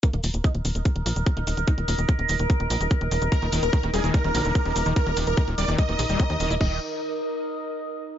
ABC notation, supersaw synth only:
X:1
M:4/4
L:1/16
Q:1/4=146
K:none
V:1 name="Supersaw synth"
z16 | z16 | _B2 z B2 z _A z B6- B z | _B2 z B2 z d z _e6- e z |
_e2 z12 z2 |]